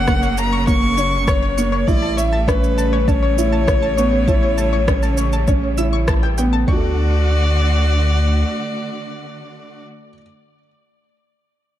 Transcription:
0.00 1.85 F#1 medium
0.00 1.84 C#3 medium
0.00 1.84 F#3 medium
0.00 1.84 A#3 loud
0.00 0.40 F#5 loud
0.08 0.57 A#3 medium
0.08 0.18 C#6 medium
0.08 kick loud
0.08 cross-stick medium
0.08 shaker soft
0.23 0.29 C#5 medium
0.23 shaker soft
0.38 0.68 A#5 loud
0.38 shaker medium
0.53 0.63 C#6 medium
0.67 0.92 A#3 loud
0.67 0.77 C#5 medium
0.67 1.29 C#6 loud
0.67 kick loud
0.67 shaker soft
0.82 0.93 C#6 medium
0.97 1.47 C#4 medium
0.97 1.04 C#5 medium
0.97 shaker medium
1.27 1.88 C#5 loud
1.27 1.38 C#6 medium
1.27 kick loud
1.27 cross-stick medium
1.27 shaker soft
1.43 1.53 C#5 medium
1.57 1.83 A#3 medium
1.57 1.68 C#6 medium
1.57 shaker medium
1.72 1.78 C#5 medium
1.87 6.65 A1 medium
1.87 6.64 C#3 medium
1.87 6.64 G3 medium
1.87 6.64 A3 loud
1.87 2.37 E4 loud
1.87 2.19 D5 loud
1.87 kick loud
1.87 shaker soft
2.02 2.13 A5 medium
2.17 2.27 C#5 medium
2.17 2.49 E5 loud
2.17 shaker medium
2.33 2.43 A5 medium
2.47 2.97 C#4 medium
2.47 3.09 B4 loud
2.47 2.54 C#5 medium
2.47 kick loud
2.47 cross-stick medium
2.47 shaker soft
2.64 shaker soft
2.78 2.88 A5 medium
2.78 shaker medium
2.93 3.03 C#5 medium
3.08 3.32 C#4 medium
3.08 6.08 C#5 loud
3.08 3.18 A5 medium
3.08 kick loud
3.08 shaker soft
3.23 3.29 C#5 medium
3.38 3.87 E4 medium
3.38 shaker medium
3.52 3.63 A5 medium
3.67 3.78 C#5 medium
3.67 kick loud
3.67 cross-stick medium
3.67 shaker soft
3.83 3.93 A5 medium
3.98 4.23 B3 medium
3.98 4.04 C#5 medium
3.98 shaker medium
4.28 4.77 E4 medium
4.28 4.38 A5 medium
4.28 kick loud
4.28 shaker soft
4.43 4.53 C#5 medium
4.58 4.68 A5 medium
4.58 shaker medium
4.73 4.79 C#5 medium
4.88 5.37 C#4 medium
4.88 kick loud
4.88 cross-stick medium
4.88 shaker soft
5.03 5.13 A5 medium
5.03 shaker soft
5.18 5.28 C#5 medium
5.18 shaker medium
5.33 5.43 A5 medium
5.33 shaker soft
5.48 5.73 C#4 medium
5.48 5.54 C#5 medium
5.48 kick loud
5.48 shaker soft
5.78 6.27 E4 medium
5.78 5.92 E6 loud
5.78 shaker medium
5.93 6.03 C#6 medium
6.08 6.18 A5 medium
6.08 kick loud
6.08 cross-stick loud
6.08 shaker soft
6.23 6.33 G5 medium
6.38 6.63 B3 medium
6.38 6.48 G5 medium
6.38 shaker medium
6.53 6.67 A5 medium
6.67 8.44 D2 loud
6.67 9.84 D3 medium
6.67 9.84 A3 medium
6.67 10.09 D4 medium
6.67 9.84 F#4 loud
6.67 9.84 D5 loud
6.67 6.96 C#6 medium
6.67 kick loud
6.67 floor tom loud
6.73 10.14 F#4 medium
6.73 10.18 A4 medium
6.80 10.21 D5 medium

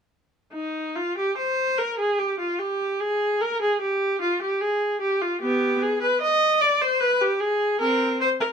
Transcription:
0.53 0.93 D#4 medium
0.96 1.17 F4 medium
1.17 1.37 G4 medium
1.37 1.77 C5 medium
1.78 1.99 A#4 medium
1.99 2.19 G#4 medium
2.19 2.39 G4 medium
2.39 2.59 F4 medium
2.59 3.00 G4 medium
3.00 3.41 G#4 medium
3.41 3.61 A#4 medium
3.61 3.81 G#4 medium
3.81 4.21 G4 medium
4.21 4.41 F4 medium
4.42 4.61 G4 medium
4.61 5.01 G#4 medium
5.01 5.21 G4 medium
5.21 5.42 F4 medium
5.41 5.79 B3 medium
5.41 5.81 G4 medium
5.82 6.02 G#4 medium
6.02 6.21 B4 medium
6.21 6.60 D#5 loud
6.61 6.81 D5 medium
6.82 7.01 C5 medium
7.00 7.21 B4 medium
7.21 7.41 G4 medium
7.40 7.81 G#4 medium
7.80 8.18 C4 medium
7.80 8.20 A#4 medium
8.21 8.29 C5 medium
8.41 8.49 A#4 medium

